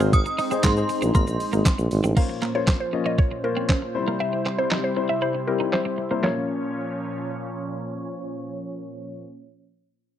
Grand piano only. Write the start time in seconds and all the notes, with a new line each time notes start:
Already playing: D#4 G#4 C5
0.51 D#4 G#4 C5
0.77 D#4 G#4 C5
2.17 A#3 C#4 F4 C5
2.55 A#3 C#4 F4 C5
2.93 A#3 C#4 F4 D#5
3.44 A#3 C#4 F4 C5
3.94 G3 C4 E4 C5
4.58 G3 C4 E4 C5
4.96 G3 C4 E4 C5
5.47 G3 C4 E4 G4
6.11 G3 C4 E4 C5
6.21 A#3 C#4 F4
6.25 C#5